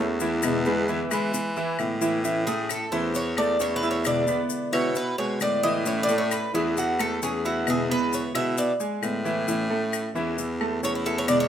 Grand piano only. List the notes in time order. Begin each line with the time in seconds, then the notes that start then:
0.00 A3 A4 C#5
0.21 E3 E4 E5
0.66 G#3 G#4 B4
0.89 E3 E4 E5
1.11 G#3 G#4 B4
1.57 E3 E4 E5
2.01 E3 E4 E5
2.24 E3 E4 E5
2.47 A3 A4 A5
2.92 E3 E4 E5
3.38 A3 A4 A5
3.60 C#4 C#5 C#6
3.83 E4 E5 E6
4.28 B3 B4 B5
4.73 E4 E5 E6
5.19 G#3 G#4 G#5
5.64 E3 E4 E5
5.86 E3 E4 E5
6.09 A3 A4 A5
6.54 E3 E4 E5
6.99 A3 A4 A5
7.23 C#4 C#5 C#6
7.45 E4 E5 E6
7.90 B3 B4 B5
8.35 E4 E5 E6
8.80 G#3 G#4 G#5
9.25 E3 E4 E5
9.48 E3 E4 E5
9.70 A3 A4 A5
10.15 E3 E4 E5
10.60 A3 A4 A5
10.83 C#4 C#5 C#6
11.06 E4 E5 E6